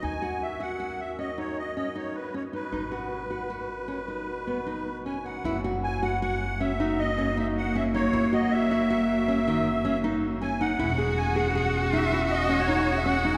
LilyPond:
<<
  \new Staff \with { instrumentName = "Accordion" } { \time 7/4 \key fis \mixolydian \tempo 4 = 157 gis''4 e''8 fis''4 e''8 dis''8 cis''8 dis''8 dis''8 cis''8 b'8 cis''8 b'8~ | b'1. gis''8 fis''8~ | fis''8 r8 gis''8 fis''8 fis''4 e''4 dis''4 e''8 fis''8 e''8 cis''8~ | cis''8 dis''8 e''1 r4 gis''8 fis''8~ |
fis''4 gis''8 fis''8 fis''4 e''4 dis''8. cis''4 e''16 fis''8. r16 | }
  \new Staff \with { instrumentName = "Nylon-string guitar" } { \time 7/4 \key fis \mixolydian dis'8 fis'4 fis'8 fis'4 cis'8 dis'4 cis'8 dis'4 cis'8 dis'8 | dis'8 fis'4 fis'8 fis'4 cis'8 dis'4 b8 dis'4 cis'8 dis'8 | e'8 fis'4 fis'8 fis'4 cis'8 dis'4 cis'8 dis'4 cis'8 dis'8 | e'8 fis'4 fis'8 fis'4 cis'8 dis4 cis'8 dis'4 cis'8 dis'8 |
e'8 gis'4 gis'8 gis'4 dis'8 e'4 cis'8 dis'4 cis'8 dis'8 | }
  \new Staff \with { instrumentName = "Cello" } { \time 7/4 \key fis \mixolydian r1. r4 | r1. r4 | ais1.~ ais4~ | ais1.~ ais4 |
fis'1.~ fis'4 | }
  \new Staff \with { instrumentName = "Woodwind section" } { \time 7/4 \key fis \mixolydian << { fis'1.~ fis'4~ | fis'1.~ fis'4 | fis'1.~ fis'4~ | fis'1.~ fis'4 |
cis'1.~ cis'4 | } \\ { <dis cis'>1.~ <dis cis'>4 | <ais, b,>1.~ <ais, b,>4 | <fis ais>1.~ <fis ais>4~ | <fis ais>1.~ <fis ais>4 |
<cis b>1.~ <cis b>4 | } >> }
  \new Staff \with { instrumentName = "Upright bass" } { \clef bass \time 7/4 \key fis \mixolydian dis,1.~ dis,4 | gis,,1.~ gis,,4 | fis,,1.~ fis,,4 | fis,,1.~ fis,,4 |
e,,1.~ e,,4 | }
>>